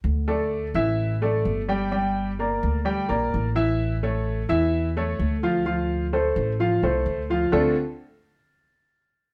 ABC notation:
X:1
M:4/4
L:1/8
Q:1/4=128
K:Dm
V:1 name="Grand piano"
z [A,Ad]2 [E,Ee]2 [A,Ad]2 [G,Gg] | [G,Gg]2 [B,Bd]2 [G,Gg] [B,Bd]2 [E,Ee]- | [E,Ee] [A,A^c]2 [E,Ee]2 [A,Ac]2 [F,Ff] | [F,Ff]2 [A,Ac]2 [F,Ff] [A,Ac]2 [F,Ff] |
[D,A,CDFA] z6 z |]
V:2 name="Upright bass" clef=bass
D,,3 A,,,3 G,,,2- | G,,,3 D,,2 B,,, A,,,2- | A,,,3 E,,3 D,,2- | D,,3 A,,,2 C,, D,,2 |
D,, z6 z |]